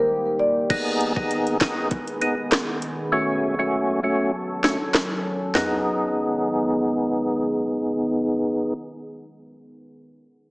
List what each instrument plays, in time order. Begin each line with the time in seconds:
Already playing: ambient pad D#3 A#3 G4
0.39 marimba D5
0.70 ambient pad D#3 B3 G#4, tonewheel organ B3 D#4 G#4, kick, closed hi-hat, crash
1.01 closed hi-hat
1.16 tonewheel organ B3 D#4 G#4, kick
1.31 closed hi-hat
1.47 closed hi-hat
1.61 tonewheel organ B3 D#4 G#4, kick, snare, clap, closed hi-hat
1.91 kick, closed hi-hat
2.07 closed hi-hat
2.21 tonewheel organ B3 D#4 G#4, closed hi-hat
2.52 cross-stick, snare, clap, closed hi-hat
2.82 closed hi-hat
3.12 ambient pad F#3 C#4 A4, tonewheel organ A3 C#4 F#4
3.59 tonewheel organ A3 C#4 F#4
4.03 tonewheel organ A3 C#4 F#4
4.64 tonewheel organ A3 C#4 F#4, snare
4.94 cross-stick, snare, clap
5.55 ambient pad D#3 B3 G#4, tonewheel organ B3 D#4 G#4, snare, floor tom